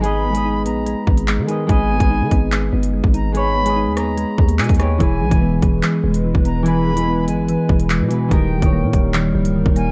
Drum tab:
HH |x-----x-----x---x-----x-x---x---|x-----x-----x---x-----x-----x---|x-----x-----x---x-----x-xxxxx---|x-----x-----x---x-----x-----x---|
CP |------------------------x-------|----------------x---------------|------------------------x-------|----------------x---------------|
SD |--------------------------------|--------------------------------|------------r---------------r---|--------------------------------|
BD |--------------------o-----------|o-----o-----o-------------o-----|--------------------o-----o-----|o-----o-----o-------------o-----|

HH |x-----x-----x---x-----x-x---x---|x-----x-----x---x-----x-----x---|
CP |------------------------x-------|----------------x---------------|
SD |--------------------------------|--------------------------------|
BD |--------------------o-----------|o-----o-----o-------------o-----|